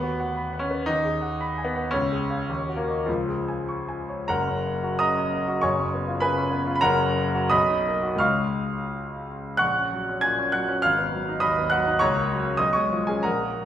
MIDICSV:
0, 0, Header, 1, 2, 480
1, 0, Start_track
1, 0, Key_signature, 6, "major"
1, 0, Tempo, 518135
1, 814, Time_signature, 2, 2, 24, 8
1, 1793, Tempo, 555042
1, 2273, Tempo, 596421
1, 3233, Tempo, 617284
1, 3713, Tempo, 708383
1, 4193, Tempo, 606061
1, 5633, Tempo, 693642
1, 7553, Tempo, 617284
1, 8513, Tempo, 586510
1, 9953, Tempo, 674916
1, 10703, End_track
2, 0, Start_track
2, 0, Title_t, "Grand piano"
2, 0, Program_c, 0, 0
2, 0, Note_on_c, 0, 39, 60
2, 0, Note_on_c, 0, 59, 98
2, 24, Note_on_c, 0, 66, 47
2, 26, Control_c, 0, 64, 127
2, 182, Note_on_c, 0, 78, 46
2, 273, Note_off_c, 0, 66, 0
2, 333, Note_on_c, 0, 83, 53
2, 433, Note_off_c, 0, 78, 0
2, 491, Note_on_c, 0, 78, 48
2, 550, Note_on_c, 0, 61, 92
2, 558, Note_off_c, 0, 59, 0
2, 590, Note_off_c, 0, 83, 0
2, 655, Note_on_c, 0, 71, 46
2, 748, Note_off_c, 0, 78, 0
2, 778, Note_off_c, 0, 39, 0
2, 798, Note_on_c, 0, 63, 110
2, 800, Note_off_c, 0, 61, 0
2, 813, Note_off_c, 0, 71, 0
2, 815, Note_on_c, 0, 39, 64
2, 826, Control_c, 0, 64, 0
2, 956, Control_c, 0, 64, 127
2, 972, Note_on_c, 0, 68, 41
2, 1125, Note_on_c, 0, 78, 47
2, 1227, Note_off_c, 0, 68, 0
2, 1303, Note_on_c, 0, 83, 59
2, 1390, Note_off_c, 0, 78, 0
2, 1463, Note_on_c, 0, 80, 51
2, 1524, Note_on_c, 0, 59, 89
2, 1534, Note_off_c, 0, 63, 0
2, 1564, Note_off_c, 0, 83, 0
2, 1627, Note_on_c, 0, 78, 52
2, 1728, Note_off_c, 0, 80, 0
2, 1764, Note_off_c, 0, 39, 0
2, 1767, Note_on_c, 0, 61, 104
2, 1784, Note_off_c, 0, 59, 0
2, 1792, Note_on_c, 0, 37, 65
2, 1793, Note_off_c, 0, 78, 0
2, 1807, Control_c, 0, 64, 0
2, 1922, Control_c, 0, 64, 127
2, 1950, Note_on_c, 0, 68, 45
2, 2105, Note_on_c, 0, 77, 44
2, 2107, Note_on_c, 0, 73, 39
2, 2207, Note_off_c, 0, 68, 0
2, 2254, Note_off_c, 0, 77, 0
2, 2255, Note_off_c, 0, 73, 0
2, 2258, Note_off_c, 0, 37, 0
2, 2274, Note_on_c, 0, 39, 60
2, 2287, Control_c, 0, 64, 0
2, 2427, Control_c, 0, 64, 127
2, 2429, Note_on_c, 0, 66, 49
2, 2493, Note_on_c, 0, 58, 75
2, 2494, Note_off_c, 0, 61, 0
2, 2589, Note_on_c, 0, 70, 43
2, 2590, Note_on_c, 0, 75, 46
2, 2682, Note_off_c, 0, 66, 0
2, 2732, Note_on_c, 0, 53, 74
2, 2733, Note_off_c, 0, 39, 0
2, 2733, Note_off_c, 0, 70, 0
2, 2733, Note_off_c, 0, 75, 0
2, 2740, Note_off_c, 0, 58, 0
2, 2749, Note_on_c, 0, 37, 57
2, 2762, Control_c, 0, 64, 0
2, 2899, Control_c, 0, 64, 127
2, 2912, Note_on_c, 0, 68, 43
2, 3073, Note_on_c, 0, 80, 44
2, 3170, Note_off_c, 0, 68, 0
2, 3226, Note_off_c, 0, 53, 0
2, 3235, Note_on_c, 0, 85, 49
2, 3326, Note_off_c, 0, 80, 0
2, 3390, Note_on_c, 0, 80, 50
2, 3484, Note_off_c, 0, 85, 0
2, 3547, Note_on_c, 0, 73, 44
2, 3646, Note_off_c, 0, 80, 0
2, 3686, Note_off_c, 0, 37, 0
2, 3696, Note_on_c, 0, 82, 92
2, 3703, Note_on_c, 0, 70, 68
2, 3705, Note_on_c, 0, 30, 59
2, 3707, Note_on_c, 0, 78, 70
2, 3711, Note_on_c, 0, 42, 67
2, 3712, Note_off_c, 0, 73, 0
2, 3724, Control_c, 0, 64, 0
2, 3833, Note_on_c, 0, 61, 49
2, 3870, Control_c, 0, 64, 127
2, 3956, Note_on_c, 0, 58, 45
2, 4028, Note_off_c, 0, 61, 0
2, 4072, Note_on_c, 0, 66, 53
2, 4149, Note_off_c, 0, 58, 0
2, 4161, Note_off_c, 0, 70, 0
2, 4162, Note_off_c, 0, 78, 0
2, 4176, Note_off_c, 0, 82, 0
2, 4179, Note_on_c, 0, 87, 98
2, 4186, Note_on_c, 0, 82, 84
2, 4190, Note_on_c, 0, 75, 76
2, 4195, Note_on_c, 0, 49, 48
2, 4271, Note_off_c, 0, 66, 0
2, 4318, Note_on_c, 0, 61, 50
2, 4400, Note_off_c, 0, 49, 0
2, 4443, Note_on_c, 0, 58, 47
2, 4517, Note_off_c, 0, 61, 0
2, 4565, Note_on_c, 0, 66, 57
2, 4637, Note_off_c, 0, 58, 0
2, 4650, Note_off_c, 0, 30, 0
2, 4651, Note_off_c, 0, 82, 0
2, 4653, Note_off_c, 0, 75, 0
2, 4654, Note_off_c, 0, 42, 0
2, 4672, Note_on_c, 0, 85, 90
2, 4678, Note_off_c, 0, 87, 0
2, 4680, Note_on_c, 0, 73, 64
2, 4682, Note_on_c, 0, 30, 68
2, 4683, Note_on_c, 0, 80, 67
2, 4685, Note_off_c, 0, 66, 0
2, 4690, Note_on_c, 0, 42, 70
2, 4699, Control_c, 0, 64, 0
2, 4809, Note_on_c, 0, 61, 48
2, 4836, Control_c, 0, 64, 127
2, 4927, Note_on_c, 0, 59, 50
2, 4992, Note_off_c, 0, 61, 0
2, 5038, Note_on_c, 0, 65, 64
2, 5110, Note_off_c, 0, 59, 0
2, 5119, Note_off_c, 0, 73, 0
2, 5120, Note_off_c, 0, 80, 0
2, 5140, Note_on_c, 0, 83, 99
2, 5147, Note_off_c, 0, 85, 0
2, 5149, Note_on_c, 0, 80, 75
2, 5151, Note_on_c, 0, 71, 73
2, 5162, Note_on_c, 0, 49, 59
2, 5225, Note_off_c, 0, 65, 0
2, 5275, Note_on_c, 0, 61, 64
2, 5347, Note_off_c, 0, 49, 0
2, 5385, Note_on_c, 0, 59, 63
2, 5464, Note_off_c, 0, 61, 0
2, 5508, Note_on_c, 0, 65, 70
2, 5546, Note_off_c, 0, 80, 0
2, 5547, Note_off_c, 0, 71, 0
2, 5564, Note_off_c, 0, 83, 0
2, 5576, Note_on_c, 0, 83, 84
2, 5581, Note_off_c, 0, 59, 0
2, 5602, Note_off_c, 0, 30, 0
2, 5606, Note_off_c, 0, 42, 0
2, 5618, Note_on_c, 0, 82, 120
2, 5626, Note_on_c, 0, 70, 88
2, 5627, Note_on_c, 0, 30, 75
2, 5627, Note_on_c, 0, 78, 82
2, 5632, Note_off_c, 0, 65, 0
2, 5632, Note_off_c, 0, 83, 0
2, 5637, Note_on_c, 0, 42, 86
2, 5644, Control_c, 0, 64, 0
2, 5751, Note_on_c, 0, 61, 62
2, 5763, Control_c, 0, 64, 127
2, 5872, Note_on_c, 0, 58, 57
2, 5945, Note_off_c, 0, 61, 0
2, 5992, Note_on_c, 0, 66, 65
2, 6068, Note_off_c, 0, 58, 0
2, 6084, Note_off_c, 0, 70, 0
2, 6084, Note_off_c, 0, 78, 0
2, 6096, Note_on_c, 0, 87, 111
2, 6097, Note_off_c, 0, 30, 0
2, 6102, Note_off_c, 0, 42, 0
2, 6102, Note_on_c, 0, 75, 81
2, 6103, Note_on_c, 0, 83, 84
2, 6108, Note_off_c, 0, 82, 0
2, 6109, Note_on_c, 0, 35, 76
2, 6114, Note_off_c, 0, 66, 0
2, 6129, Control_c, 0, 64, 0
2, 6236, Note_on_c, 0, 63, 56
2, 6248, Control_c, 0, 64, 127
2, 6354, Note_on_c, 0, 58, 52
2, 6423, Note_off_c, 0, 63, 0
2, 6462, Note_on_c, 0, 66, 54
2, 6542, Note_off_c, 0, 58, 0
2, 6553, Note_on_c, 0, 37, 60
2, 6555, Note_off_c, 0, 75, 0
2, 6555, Note_off_c, 0, 83, 0
2, 6562, Note_on_c, 0, 56, 48
2, 6569, Note_on_c, 0, 61, 47
2, 6572, Note_off_c, 0, 35, 0
2, 6572, Note_on_c, 0, 89, 98
2, 6579, Note_off_c, 0, 87, 0
2, 6582, Note_on_c, 0, 85, 73
2, 6584, Note_on_c, 0, 77, 75
2, 6585, Note_off_c, 0, 66, 0
2, 6604, Control_c, 0, 64, 0
2, 6731, Control_c, 0, 64, 127
2, 7290, Note_off_c, 0, 85, 0
2, 7291, Note_off_c, 0, 77, 0
2, 7313, Note_off_c, 0, 89, 0
2, 7507, Note_off_c, 0, 37, 0
2, 7512, Note_off_c, 0, 56, 0
2, 7521, Note_off_c, 0, 61, 0
2, 7534, Note_on_c, 0, 90, 106
2, 7540, Note_on_c, 0, 78, 82
2, 7545, Note_on_c, 0, 85, 79
2, 7549, Note_on_c, 0, 34, 61
2, 7568, Control_c, 0, 64, 0
2, 7683, Note_on_c, 0, 61, 48
2, 7714, Control_c, 0, 64, 127
2, 7803, Note_on_c, 0, 54, 41
2, 7876, Note_off_c, 0, 61, 0
2, 7932, Note_on_c, 0, 61, 52
2, 7995, Note_off_c, 0, 54, 0
2, 8002, Note_off_c, 0, 78, 0
2, 8005, Note_off_c, 0, 85, 0
2, 8028, Note_on_c, 0, 92, 105
2, 8030, Note_off_c, 0, 90, 0
2, 8033, Note_on_c, 0, 80, 71
2, 8044, Note_on_c, 0, 46, 48
2, 8117, Note_off_c, 0, 61, 0
2, 8162, Note_on_c, 0, 61, 57
2, 8232, Note_off_c, 0, 46, 0
2, 8257, Note_off_c, 0, 80, 0
2, 8269, Note_on_c, 0, 90, 95
2, 8271, Note_off_c, 0, 92, 0
2, 8276, Note_on_c, 0, 78, 73
2, 8286, Note_on_c, 0, 54, 48
2, 8349, Note_off_c, 0, 61, 0
2, 8395, Note_on_c, 0, 61, 62
2, 8470, Note_off_c, 0, 54, 0
2, 8481, Note_off_c, 0, 34, 0
2, 8495, Note_off_c, 0, 78, 0
2, 8501, Note_on_c, 0, 89, 112
2, 8508, Note_off_c, 0, 90, 0
2, 8508, Note_on_c, 0, 77, 82
2, 8512, Note_off_c, 0, 61, 0
2, 8523, Note_on_c, 0, 32, 69
2, 8528, Control_c, 0, 64, 0
2, 8636, Note_on_c, 0, 59, 52
2, 8657, Control_c, 0, 64, 127
2, 8749, Note_on_c, 0, 54, 52
2, 8828, Note_off_c, 0, 59, 0
2, 8881, Note_on_c, 0, 63, 58
2, 8943, Note_off_c, 0, 54, 0
2, 8958, Note_off_c, 0, 77, 0
2, 8976, Note_on_c, 0, 87, 100
2, 8981, Note_on_c, 0, 83, 83
2, 8984, Note_on_c, 0, 75, 80
2, 8988, Note_off_c, 0, 89, 0
2, 8991, Note_on_c, 0, 39, 57
2, 9067, Note_off_c, 0, 63, 0
2, 9119, Note_on_c, 0, 59, 54
2, 9181, Note_off_c, 0, 39, 0
2, 9206, Note_off_c, 0, 83, 0
2, 9208, Note_off_c, 0, 75, 0
2, 9218, Note_on_c, 0, 90, 103
2, 9221, Note_off_c, 0, 87, 0
2, 9231, Note_on_c, 0, 78, 80
2, 9241, Note_on_c, 0, 54, 60
2, 9305, Note_off_c, 0, 59, 0
2, 9358, Note_on_c, 0, 63, 63
2, 9426, Note_off_c, 0, 54, 0
2, 9444, Note_off_c, 0, 32, 0
2, 9452, Note_off_c, 0, 78, 0
2, 9459, Note_on_c, 0, 85, 113
2, 9462, Note_off_c, 0, 90, 0
2, 9468, Note_on_c, 0, 82, 81
2, 9470, Note_on_c, 0, 73, 91
2, 9473, Note_off_c, 0, 63, 0
2, 9480, Control_c, 0, 64, 0
2, 9480, Note_on_c, 0, 37, 73
2, 9599, Note_on_c, 0, 58, 50
2, 9603, Control_c, 0, 64, 127
2, 9724, Note_on_c, 0, 54, 46
2, 9786, Note_off_c, 0, 58, 0
2, 9830, Note_on_c, 0, 61, 55
2, 9912, Note_off_c, 0, 54, 0
2, 9921, Note_off_c, 0, 82, 0
2, 9922, Note_off_c, 0, 73, 0
2, 9935, Note_on_c, 0, 87, 99
2, 9945, Note_off_c, 0, 37, 0
2, 9948, Note_on_c, 0, 75, 80
2, 9949, Note_off_c, 0, 85, 0
2, 9953, Note_on_c, 0, 35, 64
2, 9954, Note_off_c, 0, 61, 0
2, 9966, Control_c, 0, 64, 0
2, 10048, Note_on_c, 0, 85, 93
2, 10054, Note_off_c, 0, 75, 0
2, 10056, Note_off_c, 0, 87, 0
2, 10058, Note_on_c, 0, 73, 68
2, 10067, Note_on_c, 0, 56, 57
2, 10093, Control_c, 0, 64, 127
2, 10184, Note_on_c, 0, 53, 50
2, 10252, Note_off_c, 0, 56, 0
2, 10279, Note_off_c, 0, 73, 0
2, 10290, Note_on_c, 0, 80, 82
2, 10291, Note_off_c, 0, 85, 0
2, 10298, Note_on_c, 0, 61, 53
2, 10302, Note_on_c, 0, 68, 58
2, 10374, Note_off_c, 0, 53, 0
2, 10402, Note_on_c, 0, 82, 81
2, 10408, Note_off_c, 0, 35, 0
2, 10409, Note_on_c, 0, 70, 68
2, 10410, Note_on_c, 0, 78, 61
2, 10415, Note_off_c, 0, 68, 0
2, 10416, Note_on_c, 0, 34, 57
2, 10417, Note_off_c, 0, 80, 0
2, 10422, Note_off_c, 0, 61, 0
2, 10437, Control_c, 0, 64, 0
2, 10543, Note_on_c, 0, 58, 43
2, 10544, Control_c, 0, 64, 127
2, 10679, Note_on_c, 0, 54, 38
2, 10703, Note_off_c, 0, 34, 0
2, 10703, Note_off_c, 0, 54, 0
2, 10703, Note_off_c, 0, 58, 0
2, 10703, Note_off_c, 0, 70, 0
2, 10703, Note_off_c, 0, 78, 0
2, 10703, Note_off_c, 0, 82, 0
2, 10703, End_track
0, 0, End_of_file